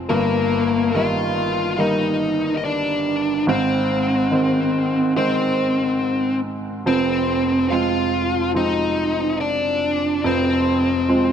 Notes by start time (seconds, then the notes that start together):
Already playing: F3 G#3 C4
0.09 G1 G2 A#3 A#4
0.94 D#3 G3 A#3 F4 F5
1.78 D#3 G3 A#3 D#4 D#5
2.57 D#5
2.64 D4 D5
3.47 G#1 G#2 C4 C5
4.31 D#3 G#3 C4
5.16 D#3 G#3 C4 C5
6.86 F1 F2 C4 C5
7.71 F3 G#3 C4 F4 F5
8.54 F3 G#3 C4 D#4 D#5
9.40 D4 D5
10.24 F1 F2 C4 C5
11.08 F3 G#3 C4